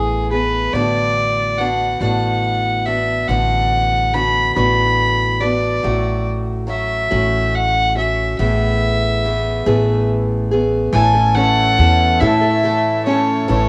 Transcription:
0.00 0.69 A1 medium
0.00 0.32 A2 soft
0.00 0.32 E3 medium
0.00 0.32 A3 soft
0.00 0.32 B3 medium
0.00 0.28 G#4 medium
0.00 0.30 G#4 medium
0.31 0.75 A3 soft
0.31 0.74 B3 soft
0.31 0.74 G#4 soft
0.31 0.75 B4 medium
0.73 1.97 A1 medium
0.73 1.59 A2 medium
0.73 1.57 D3 medium
0.73 1.58 B3 medium
0.73 1.59 D4 medium
0.73 1.60 F#4 medium
0.73 1.60 D5 loud
1.58 2.01 D3 soft
1.58 2.01 B3 medium
1.58 2.01 D4 medium
1.58 2.00 F#4 medium
1.58 2.01 F#5 medium
2.01 3.25 A1 medium
2.01 2.87 A2 medium
2.01 2.87 D3 medium
2.01 2.87 B3 medium
2.01 2.86 D4 medium
2.01 2.86 F#4 medium
2.01 2.87 F#5 medium
2.86 3.29 B3 soft
2.86 3.29 D4 soft
2.86 3.29 F#4 soft
2.86 3.29 E5 medium
3.28 4.52 A1 medium
3.28 4.14 A2 medium
3.28 4.12 D3 medium
3.28 4.13 B3 medium
3.28 4.14 D4 medium
3.28 4.15 F#4 medium
3.28 4.15 F#5 loud
4.13 4.56 D3 medium
4.13 4.56 B3 medium
4.13 4.55 D4 medium
4.13 4.55 F#4 medium
4.13 4.54 B5 loud
4.55 5.80 A1 medium
4.55 5.42 A2 medium
4.55 5.42 D3 medium
4.55 5.42 B3 medium
4.55 5.41 D4 medium
4.55 5.40 F#4 medium
4.55 5.43 B5 loud
5.41 5.84 B3 soft
5.41 5.84 D4 soft
5.41 5.84 F#4 soft
5.41 6.26 D5 medium
5.83 7.08 A1 medium
5.83 6.69 A2 medium
5.83 6.66 F#3 medium
5.83 6.67 A3 medium
5.83 6.68 F#4 medium
6.67 7.11 F#3 medium
6.67 7.10 A3 medium
6.67 7.10 C#4 medium
6.67 7.10 F#4 medium
6.67 7.57 E5 loud
7.11 8.35 A1 medium
7.11 7.97 A2 medium
7.11 7.97 F#3 medium
7.11 7.97 A3 medium
7.11 7.95 C#4 medium
7.11 7.94 F#4 medium
7.55 7.96 F#5 loud
7.96 8.38 A3 soft
7.96 8.39 C#4 soft
7.96 8.39 F#4 soft
7.96 8.36 E5 medium
8.38 9.63 A1 medium
8.38 9.24 A2 medium
8.38 9.23 E3 medium
8.38 9.24 A3 medium
8.38 9.24 B3 medium
8.38 9.25 G#4 medium
8.38 10.05 E5 loud
9.24 9.66 E3 medium
9.24 9.66 A3 medium
9.24 9.65 B3 medium
9.24 9.65 G#4 medium
9.66 10.90 A1 loud
9.66 10.53 A2 medium
9.66 10.52 E3 medium
9.66 10.52 A3 medium
9.66 10.51 B3 medium
9.66 10.50 G#4 medium
10.51 10.93 A3 soft
10.51 10.94 B3 soft
10.51 10.94 G#4 medium
10.93 11.75 A1 loud
10.93 11.15 A2 medium
10.93 11.15 E3 medium
10.93 13.69 E3 medium
10.93 13.69 A3 medium
10.93 11.15 A3 medium
10.93 11.14 C#4 medium
10.93 13.69 E4 medium
10.93 13.69 A4 medium
10.93 11.13 A4 medium
10.93 11.36 G#5 loud
11.14 11.34 A3 soft
11.14 11.35 C#4 medium
11.14 11.36 A4 medium
11.34 11.77 E3 medium
11.34 11.78 A3 medium
11.34 11.79 C#4 medium
11.34 12.20 C#4 medium
11.34 11.79 A4 medium
11.34 12.21 F#5 loud
11.78 12.20 E2 loud
11.78 12.20 E3 medium
11.78 12.20 A3 medium
11.78 12.21 C#4 medium
11.78 12.21 A4 medium
12.20 12.43 A2 medium
12.20 13.45 A2 medium
12.20 12.43 E3 medium
12.20 12.43 A3 medium
12.20 12.42 C#4 medium
12.20 13.05 E4 medium
12.20 12.40 A4 loud
12.20 13.05 E5 loud
12.41 12.63 A3 medium
12.41 12.64 C#4 soft
12.41 12.63 A4 medium
12.63 13.05 E3 medium
12.63 13.05 A3 medium
12.63 13.06 C#4 medium
12.63 13.07 A4 medium
13.06 13.47 E3 medium
13.06 13.47 A3 medium
13.06 13.49 C#4 medium
13.06 13.48 C#4 medium
13.06 13.48 A4 medium
13.06 13.46 C#5 medium
13.48 13.69 A1 loud
13.48 13.69 A2 medium
13.48 13.69 E3 medium
13.48 13.69 A3 medium
13.48 13.69 C#4 medium
13.48 13.68 A4 medium
13.48 13.69 C#5 loud

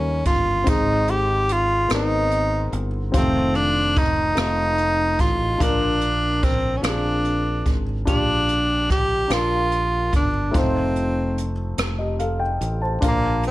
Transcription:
0.00 0.22 D#2 medium
0.00 0.63 D#3 soft
0.00 0.40 G3 soft
0.00 0.40 A#3 soft
0.00 0.22 C#4 medium
0.00 0.41 C#4 soft
0.00 0.41 D#4 soft
0.00 0.45 A#4 medium
0.25 0.63 G1 medium
0.25 0.70 F4 medium
0.25 kick medium
0.25 closed hi-hat soft
0.64 1.86 G#1 medium
0.64 1.85 G#2 soft
0.64 1.64 G#3 medium
0.64 1.63 C4 medium
0.64 1.63 D#4 medium
0.64 kick medium
0.64 closed hi-hat medium
0.68 1.11 D#4 medium
1.08 1.53 G4 medium
1.08 closed hi-hat soft
1.49 1.91 F4 medium
1.49 closed hi-hat soft
1.88 2.68 G#1 medium
1.88 1.96 B3 soft
1.88 2.87 D#4 soft
1.88 2.88 A#4 medium
1.88 cross-stick medium
1.88 closed hi-hat medium
1.94 2.90 C4 medium
1.94 2.80 D#4 medium
2.31 closed hi-hat soft
2.72 3.10 G1 medium
2.72 closed hi-hat soft
3.11 4.33 F1 medium
3.11 4.11 D#3 medium
3.11 3.19 G3 soft
3.11 4.10 C4 medium
3.11 4.11 F4 medium
3.11 4.11 C5 medium
3.11 kick medium
3.11 closed hi-hat medium
3.17 4.13 A3 medium
3.17 3.57 C4 medium
3.55 3.99 D4 medium
3.55 closed hi-hat soft
3.96 5.22 D#4 medium
3.96 kick medium
3.96 closed hi-hat soft
4.35 5.15 F1 medium
4.35 5.33 A3 soft
4.35 5.34 C4 soft
4.35 5.34 D#4 soft
4.35 5.34 F4 soft
4.35 5.35 D#5 medium
4.35 cross-stick medium
4.35 closed hi-hat medium
4.78 closed hi-hat soft
5.19 5.57 A1 medium
5.19 5.63 F4 medium
5.19 kick medium
5.19 closed hi-hat soft
5.58 6.80 A#1 medium
5.58 6.79 A#2 soft
5.58 6.57 D4 medium
5.58 6.45 D4 medium
5.58 6.57 F4 medium
5.58 6.58 A#4 medium
5.58 kick medium
5.58 closed hi-hat medium
6.01 closed hi-hat soft
6.43 6.78 C4 medium
6.43 kick medium
6.43 closed hi-hat soft
6.77 6.84 C#4 medium
6.81 7.62 A#1 medium
6.81 6.89 C4 soft
6.81 7.76 D4 medium
6.81 7.81 F4 soft
6.81 7.82 G#4 medium
6.81 cross-stick medium
6.81 closed hi-hat medium
6.88 7.83 D4 soft
7.24 closed hi-hat soft
7.66 8.04 G#1 medium
7.66 kick medium
7.66 closed hi-hat soft
8.05 9.27 A#1 medium
8.05 9.27 A#2 soft
8.05 9.04 D4 medium
8.05 8.86 D4 medium
8.05 9.05 F4 soft
8.05 9.05 G4 medium
8.05 kick medium
8.05 closed hi-hat medium
8.49 closed hi-hat soft
8.90 9.29 G4 medium
8.90 kick medium
8.90 cross-stick soft
8.90 closed hi-hat soft
9.28 10.09 A#1 medium
9.28 10.27 D4 soft
9.28 10.28 F4 soft
9.28 10.29 A#4 medium
9.28 cross-stick medium
9.28 closed hi-hat medium
9.33 10.11 F4 medium
9.72 closed hi-hat soft
10.13 10.51 G1 medium
10.13 10.59 D4 medium
10.13 kick medium
10.13 closed hi-hat soft
10.51 11.75 F1 medium
10.51 11.51 A3 medium
10.51 11.51 C4 medium
10.51 11.52 D#4 medium
10.51 11.52 F4 medium
10.51 11.53 C5 medium
10.51 kick medium
10.51 closed hi-hat medium
10.58 11.49 C4 medium
10.96 closed hi-hat soft
11.38 closed hi-hat soft
11.78 12.57 F1 medium
11.78 cross-stick medium
11.78 closed hi-hat medium
11.98 12.19 G4 soft
11.98 12.18 D#5 soft
12.19 12.40 A4 soft
12.19 12.39 F5 medium
12.19 closed hi-hat soft
12.40 12.79 G5 medium
12.61 12.99 A1 medium
12.61 closed hi-hat soft
12.82 13.21 C5 soft
12.82 13.21 A5 soft
13.01 13.51 A#1 medium
13.01 13.51 A#2 soft
13.01 13.51 D4 medium
13.01 13.51 F4 medium
13.01 13.51 A#4 medium
13.01 kick medium
13.01 closed hi-hat medium
13.07 13.43 A#3 medium
13.43 closed hi-hat soft
13.47 13.51 C4 medium

